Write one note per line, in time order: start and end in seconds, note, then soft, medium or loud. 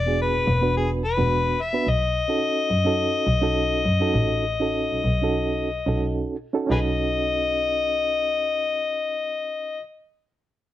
0.00 0.25 E1 loud
0.00 0.17 D5 loud
0.06 0.46 B3 medium
0.06 0.47 D4 medium
0.06 0.47 F#4 medium
0.06 0.47 G#4 medium
0.22 0.72 B4 medium
0.34 0.46 E1 soft
0.47 1.09 E1 medium
0.61 1.02 B3 medium
0.61 1.02 D4 medium
0.61 1.02 F#4 medium
0.61 1.03 B4 medium
0.77 0.89 G#4 medium
1.05 1.63 B4 medium
1.17 1.42 E1 medium
1.17 1.57 B3 medium
1.17 1.58 D4 medium
1.17 1.58 F#4 medium
1.17 1.58 B4 medium
1.61 1.91 E5 medium
1.73 1.86 B3 medium
1.73 1.86 D4 medium
1.73 1.87 F#4 medium
1.73 1.87 B4 medium
1.86 2.11 B1 medium
1.86 6.04 D#5 loud
2.28 2.69 C#4 medium
2.28 2.69 D#4 medium
2.28 2.69 F#4 medium
2.28 2.70 A4 medium
2.70 2.95 F#2 medium
2.85 3.26 C#4 medium
2.85 3.26 D#4 medium
2.85 3.27 F#4 medium
2.85 3.27 A4 loud
3.26 3.77 B1 medium
3.41 3.84 C#4 medium
3.41 3.84 D#4 medium
3.41 3.84 F#4 medium
3.41 3.85 A4 loud
3.85 3.99 F#2 medium
4.00 4.43 C#4 medium
4.00 4.44 D#4 medium
4.00 4.44 F#4 medium
4.00 4.44 A4 loud
4.14 4.81 A1 loud
4.60 5.05 C#4 medium
4.60 5.05 D#4 medium
4.60 5.05 F#4 medium
4.60 5.06 A4 medium
4.90 5.04 B1 soft
5.04 5.76 B1 medium
5.22 5.68 C#4 medium
5.22 5.69 D#4 medium
5.22 5.69 F#4 medium
5.22 5.69 A4 loud
5.86 6.16 B1 medium
5.86 6.35 C#4 medium
5.86 6.35 D#4 medium
5.86 6.35 F#4 medium
5.86 6.36 A4 medium
6.53 6.65 C#4 medium
6.53 6.67 D#4 medium
6.53 6.70 F#4 medium
6.53 6.71 A4 medium
6.66 9.80 B1 medium
6.66 9.76 C#4 medium
6.66 9.78 D#4 medium
6.71 9.81 F#4 medium
6.71 6.80 G#4 medium
6.71 9.83 A4 medium
6.71 6.79 B4 medium
6.71 9.81 D#5 medium